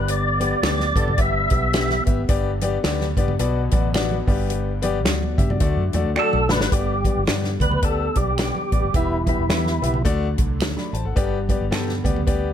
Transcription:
Already playing: G1 G2 D3 G3 B3 G4 B4 D5
0.08 D5, closed hi-hat
0.40 B3 G4 D5, closed hi-hat, high conga
0.63 D2 B3 G4 D5, finger snap, snare, closed hi-hat, muted conga
0.80 snare, high conga
0.96 G2 B3 G4 A4, kick, closed hi-hat, muted conga, low conga
1.08 high conga, low conga
1.18 G1 G2 E3 B3 G4 E5, kick, closed hi-hat
1.50 B1 B3 G4 E5, kick, closed hi-hat, muted conga, high conga
1.73 B3 G4 E5, finger snap, snare, closed hi-hat
1.90 snare, high conga
2.06 G#1 B3 G4 E5, kick, closed hi-hat
2.29 G1 G2 D3 B3 G4 D5, kick, closed hi-hat
2.61 B3 G4 D5, closed hi-hat, muted conga, high conga
2.84 D2 B3 G4 D5, finger snap, snare, closed hi-hat
3.01 snare, high conga
3.17 G2 B3 G4 D5, kick, closed hi-hat, low conga
3.28 high conga, low conga
3.39 B1 B2 F#3 B3 F#4 D5, closed hi-hat, muted conga
3.71 A1 B3 F#4 D5, kick, closed hi-hat, high conga
3.94 B3 F#4 D5, finger snap, snare, closed hi-hat
4.11 high conga
4.27 G1 G2 G3 B3 G4 D5, kick, open hi-hat
4.50 closed hi-hat, muted conga
4.82 B3 G4 D5, closed hi-hat, high conga
5.05 D2 F#4 D5, finger snap, snare, closed hi-hat, muted conga
5.23 high conga
5.38 G2 G4 E5, kick, closed hi-hat, muted conga, low conga
5.50 F#4 D5, high conga, low conga
5.60 D2 D3 F#3 A3 F#4 D5, kick, closed hi-hat, muted conga
5.77 F#2
5.93 E2 A3 F#4 D5, closed hi-hat, muted conga, high conga
6.05 D2
6.16 A3 F#4 A4 D5, finger snap, muted conga
6.33 B1, high conga
6.49 A1 A3 F#4 B4 D5, snare, low conga
6.61 G#1, snare
6.71 G1 G2 D3 G3 B3 G4 D5, kick, closed hi-hat, muted conga
7.05 B3 G4 D5, kick, closed hi-hat, muted conga, high conga
7.17 G1
7.27 G2 B3 G4 D5, finger snap, snare, closed hi-hat, muted conga
7.44 snare, high conga
7.60 D2 B3 G4 B4 D5, kick, closed hi-hat, muted conga, low conga
7.71 high conga, low conga
7.82 B3 G4 A4 D5, kick, closed hi-hat
8.15 B1 B3 G4 D5, kick, closed hi-hat, muted conga, high conga
8.38 B3 G4 D5, finger snap, snare, closed hi-hat, muted conga
8.55 high conga
8.72 A1 B3 G4 D5, kick, closed hi-hat
8.84 G1
8.94 E1 E3 B3 E4 G4 E5, kick, closed hi-hat
9.27 B3 E4 G4 E5, kick, closed hi-hat, muted conga, high conga
9.38 E1
9.49 E2 B3 G4 E5, finger snap, snare, closed hi-hat, muted conga
9.66 snare, high conga
9.82 B1 B3 G4 E5, closed hi-hat, low conga
9.94 high conga, low conga
10.05 D2 D3 F#3 A3 F#4 D5, kick, closed hi-hat, muted conga
10.38 C2, kick, closed hi-hat, high conga
10.60 D2, finger snap, snare, closed hi-hat, muted conga
10.77 D5 B5, snare, high conga
10.93 A1 C5 A5, closed hi-hat, muted conga
11.05 G#1 A4 F#5
11.16 G1 G2 D3 G3 B3 G4 D5, kick, closed hi-hat, muted conga
11.49 B3 G4 D5, kick, closed hi-hat, high conga
11.61 G1
11.71 G2 B3 G4 A4, finger snap, snare, closed hi-hat, muted conga
11.89 snare, high conga
12.04 D2 B3 G4 D5, kick, closed hi-hat, muted conga, low conga
12.16 high conga, low conga
12.27 B3 G4 D5, kick, closed hi-hat, muted conga

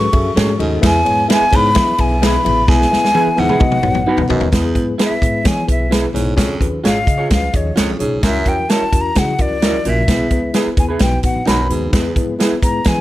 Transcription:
Already playing: C#6
0.12 F#2 C#4 F#4 G#4 A4 E5, kick, ride
0.25 high conga
0.36 G#2 A3 C#4 F#4 G#4 A4 C#5, snare, ride, muted conga
0.47 muted conga, high conga
0.59 D#2 G#2 C#4 F#4 G#4 A4 D#5, ride, low conga
0.81 E2 B3 E4 G#4 B4 E5, kick, snare, ride, muted conga, low conga
0.86 G#5
1.05 G#2 B3 E4 G#4 B4 C#5, ride, high conga
1.28 B3 E4 G#4 B4 E5, snare, ride
1.32 G#5
1.41 muted upright bass stroke, muted conga
1.51 G#2 B3 E4 G#4 B4 C#5, kick, ride, low conga
1.56 B5
1.75 E3 B3 E4 G#4 B4 E5, kick, snare, ride, muted conga, high conga
1.88 muted conga
1.98 B1 B3 E4 G#4 B4 E5 G#5, kick, ride
2.10 high conga
2.21 B3 E4 G#4 B4 E5 B5, snare, ride, muted conga
2.32 muted conga, high conga
2.44 A1 B3 E4 G#4 B4 E5, ride, low conga
2.68 B1 E2 B3 E4 G#4 B4 E5 G#5, kick, snare, muted conga, low conga
2.79 snare, muted conga
2.90 C#2 B3 E4 G#4 B4 E5, snare, high conga
3.05 snare
3.14 B3 E4 G#4 B4 E5, high tom, muted conga
3.27 muted upright bass stroke
3.36 D#2 G#2 B3 E4 G#4 B4 E5 F#5, high tom, low conga
3.49 E4 G#4 B4, mid tom
3.59 B1 B3 D#4 F#4 B4 D#5, kick, mid tom, muted conga, high conga
3.72 mid tom
3.82 A1 B3 F#4 B4 C#5, mid tom
3.94 mid tom, high conga
4.06 B3 D#4 F#4 B4 F#5, muted conga
4.17 B1, floor tom, muted conga, high conga
4.29 C#2 F#2 B3 D#4 F#4 B4 D#5, floor tom, low conga
4.41 D#2, floor tom
4.52 E2 B3 E4 G#4 B4, kick, snare, closed hi-hat, muted conga, low conga
4.74 G#2 B3 E4 G#4 B4, kick, closed hi-hat, high conga
4.98 B3 E4 G#4 B4, snare, closed hi-hat, muted conga
5.02 E5
5.10 muted upright bass stroke, muted conga
5.21 G#2 B3 E4 G#4 B4, kick, closed hi-hat
5.44 E3 B3 E4 G#4 C#5 G#5, kick, snare, closed hi-hat, muted conga, high conga
5.56 muted conga
5.66 B1 B3 E4 G#4 B4, kick, closed hi-hat
5.71 E5
5.79 high conga
5.89 B3 E4 G#4 B4, snare, closed hi-hat
6.02 high conga
6.14 B1 G#2 B3 E4 G#4 C#5, snare, closed hi-hat, low conga
6.36 F2 C#4 F4 G#4 C#5, kick, snare, closed hi-hat, low conga
6.49 muted conga
6.60 D#2 C#4 F4 G#4 B4, kick, closed hi-hat, high conga
6.83 G#1 C#4 F4 G#4 C#5 F5, snare, closed hi-hat, muted conga
7.06 C#3 C#4 F4 G#4 D#5, kick, closed hi-hat
7.18 F4 G#4 C#5
7.30 C#2 C#4 F4 G#4 B4 F5, kick, snare, closed hi-hat, muted conga, high conga
7.42 muted conga
7.53 D#2 C#4 F4 G#4 C#5 D#5, kick, closed hi-hat
7.65 high conga
7.75 C#2 F2 C#4 F4 G#4 C#5, snare, closed hi-hat
7.88 muted conga, high conga
7.99 B1 G#2 C#4 F4 G#4 C#5, closed hi-hat, low conga
8.23 C#2 F#2 C#4 E4 F#4 A#4 E5, kick, snare, closed hi-hat, muted conga, low conga
8.46 E2 C#4 E4 F#4 A#4 G5, kick, closed hi-hat, high conga
8.69 C#4 E4 F#4 A#4 C#5 A5, snare, closed hi-hat
8.81 muted upright bass stroke, muted conga
8.92 E2 C#4 E4 F#4 A#4, kick, closed hi-hat
9.01 A#5
9.15 C#3 C#4 E4 F#4 G#4 F#5, kick, snare, closed hi-hat, muted conga, high conga
9.27 muted conga
9.38 C#2 C#4 E4 F#4 A#4 D5, kick, closed hi-hat
9.50 high conga
9.61 C#4 E4 F#4 A#4 C#5, snare, closed hi-hat, muted conga
9.73 muted conga, high conga
9.85 A#1 A#2 C#4 E4 F#4 A#4, closed hi-hat, low conga
9.89 E5
10.08 B1 E2 B3 E4 G#4 B4, kick, snare, closed hi-hat, muted conga, low conga
10.30 C#2 B3 G#4 B4, kick, closed hi-hat, high conga
10.53 B3 E4 G#4 B4, snare, closed hi-hat, muted conga
10.67 muted upright bass stroke
10.77 D#2 B3 E4 G#4 B4 G#5, kick, closed hi-hat, low conga
10.89 E4 G#4 B4
10.99 B1 B3 D#4 F#4 B4 G5, kick, snare, closed hi-hat, muted conga, high conga
11.12 muted conga
11.23 A1 B3 D#4 F#4 B4 F#5, kick, closed hi-hat
11.36 high conga
11.46 B1 F#2 B3 D#4 F#4 B4 B5, snare, closed hi-hat, muted conga
11.58 muted conga, high conga
11.69 D#2 G#2 B3 D#4 F#4 B4, closed hi-hat, low conga
11.92 E2 B3 E4 G#4 B4, kick, snare, closed hi-hat, muted conga, low conga
12.04 muted conga
12.15 G#2 B3 E4 G#4 B4, kick, closed hi-hat, high conga
12.38 B3 E4 G#4 B4, snare, closed hi-hat, muted conga
12.51 muted upright bass stroke, muted conga
12.62 G#2 B3 E4 G#4 B4 A#5, kick, closed hi-hat
12.84 E3 B3 E4 G#4 B4 G#5, kick, snare, closed hi-hat, high conga
12.97 muted conga

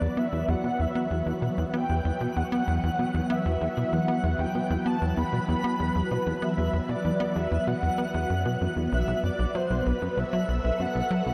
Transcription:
Already playing: E3 F#3 B3 B4 D5 E5 F#6
0.01 E2
0.17 B3 E5
0.33 E2
0.48 E2 F#5
0.64 B2
0.80 E2 E5
0.95 B3
1.11 E2
1.27 E2
1.42 B2
1.58 E2
1.74 B3 G5
1.89 E2
2.05 E2
2.21 B2
2.36 E2 F#5
2.52 B3
2.68 E2
2.84 E2
2.99 B2
3.14 E2
3.30 B3 E5
3.46 E2
3.61 E2
3.77 B2
3.93 E2 F#5
4.08 B3
4.24 E2
4.39 E2 G5
4.55 B2
4.70 E2
4.86 B3 A5
5.02 E2
5.17 E2 B5
5.33 B2
5.48 E2
5.64 B3
5.80 E2
5.96 E2
6.11 B2 B4
6.27 E2
6.42 B3 E5
6.58 E2
6.73 E2
6.89 B2 D5
7.05 E2
7.20 B3
7.36 E2 E5
7.52 E2
7.67 B2 F#5
7.83 E2
7.98 B3
8.14 E2
8.30 F#2
8.46 B2
8.61 F#2
8.77 E2
8.92 B1 E5
9.08 B1
9.24 F#2 D5
9.39 B1
9.55 F#3 C5
9.70 B1
9.86 B1 B4
9.99 F#2 A4
10.11 E5
10.17 B1 E5
10.33 F#3
10.49 B1 E5
10.64 B1
10.80 F#2 F#5
10.96 B1
11.11 F#3
11.26 B1

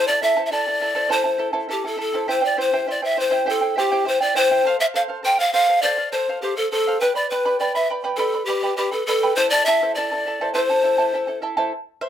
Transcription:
0.07 E4 A4 D5 A5
0.22 E4 A4 E5 A5
0.37 E4 A4 C5 E5 A5
0.46 E5
0.51 E4 A4 D5 E5 A5
0.67 E4 A4 A5
0.81 E4 A4 E5 A5
0.95 E4 A4 C5 E5 A5
1.09 E4 A4 C5 E5 A5
1.24 E4 A4 A5
1.38 E4 A4 E5 A5
1.53 E4 A4 C5 E5 A5
1.69 E4 G4 A4 E5 A5
1.84 E4 A4 A5
1.97 E4 A4 E5 A5
2.14 E4 A4 C5 E5 A5
2.28 E4 G4 C5 E5 G5
2.41 E4 C5 D5 G5
2.57 E4 C5 E5 G5
2.61 C5
2.73 E4 G4 C5 E5 G5
2.87 E4 C5 D5 E5 G5
3.02 E4 C5 E5 G5
3.16 E4 C5 E5 G5
3.31 E4 G4 C5 E5 G5
3.46 E4 G4 A4 C5 E5 G5
3.61 E4 C5 G5
3.76 E4 G4 C5 E5 G5
3.92 E4 G4 C5 E5 G5
4.05 E4 C5 E5 G5
4.20 E4 C5 D5 G5
4.35 E4 C5 E5 G5
4.51 E4 G4 C5 E5 G5
4.65 A4 C5 F5
4.79 C5 E5 F5
4.94 A4 C5 F5
5.08 A4 C5 F5
5.23 A4 C5 F5 G5
5.38 C5 F5
5.53 A4 C5 F5
5.69 A4 C5 F5
5.82 A4 C5 D5 F5
5.98 C5 F5
6.12 A4 C5 F5
6.29 A4 C5 F5
6.42 G4 A4 C5 F5
6.56 A4 C5 F5
6.72 A4 C5 F5
6.87 A4 C5 F5
7.00 G4 B4 D5 G5 B5
7.15 B4 D5 B5
7.30 B4 D5 G5 B5
7.45 G4 B4 D5 G5 B5
7.60 B4 D5 G5 B5
7.75 B4 D5 E5 B5
7.90 B4 D5 G5 B5
8.04 G4 B4 D5 G5 B5
8.17 G4 A4 B4 D5 G5 B5
8.34 B4 D5 B5
8.45 G4 B4 D5 G5
8.49 B5
8.63 G4 B4 D5 G5 B5
8.77 G4 B4 D5 G5 B5
8.92 A4 B4 D5 B5
9.07 A4 B4 D5 G5 B5
9.23 G4 B4 D5 G5 B5
9.36 E4 A4 C5 E5 A5
9.50 E4 A4 D5 A5
9.65 E4 A4 E5 A5
9.82 E4 A4 C5 E5 A5
9.95 E4 A4 D5 E5 A5
10.11 E4 A4 A5
10.26 E4 A4 E5 A5
10.41 E4 A4 C5 E5 A5
10.54 E4 A4 C5 E5 A5
10.70 E4 A4 A5
10.83 E4 A4 E5 A5
10.98 E4 A4 C5 E5 A5
11.14 E4 A4 E5 A5
11.27 E4 A4 A5
11.42 E4 A4 E5 A5
11.57 E4 A4 C5 E5 A5
12.01 C5 E5

